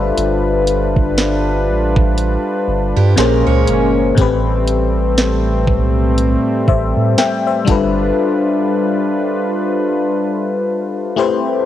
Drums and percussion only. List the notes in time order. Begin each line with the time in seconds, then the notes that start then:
0.18 closed hi-hat
0.67 closed hi-hat
0.96 kick
1.18 snare, closed hi-hat
1.96 kick
2.18 closed hi-hat
3.18 snare, closed hi-hat
3.68 closed hi-hat
4.18 kick, closed hi-hat
4.67 closed hi-hat
5.18 snare, closed hi-hat
5.67 kick
6.18 closed hi-hat
6.68 kick
7.18 snare, closed hi-hat
7.68 kick, closed hi-hat